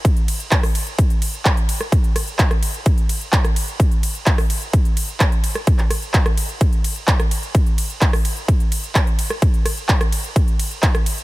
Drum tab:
RD |x-x-x-x-x-x-x-x-|x-x-x-x-x-x-x-x-|x-x-x-x-x-x-x-x-|x-x-x-x-x-x-x-x-|
HH |xxoxxooxxxoxxxox|xxoxxxoxxxoxxxox|xxoxxooxxxoxxxox|xxoxxxoxxxoxxxox|
CP |----x-------x---|----x-------x---|----x-------x---|-x--x-------x---|
SD |-----r---------r|--r--r-------r--|-----r---------r|--r--r-------r--|
BD |o---o---o---o---|o---o---o---o---|o---o---o---o---|o---o---o---o---|

RD |x-x-x-x-x-x-x-x-|x-x-x-x-x-x-x-x-|
HH |xxoxxooxxxoxxxox|xxoxxxoxxxoxxxox|
CP |----x-------x---|----x-------x---|
SD |-----r---------r|--r--r-------r--|
BD |o---o---o---o---|o---o---o---o---|